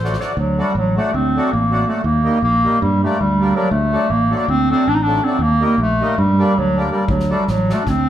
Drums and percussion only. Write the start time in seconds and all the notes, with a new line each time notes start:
0.05 snare
0.13 snare
0.20 snare
7.08 kick
7.20 snare
7.48 snare
7.70 snare
7.86 kick, snare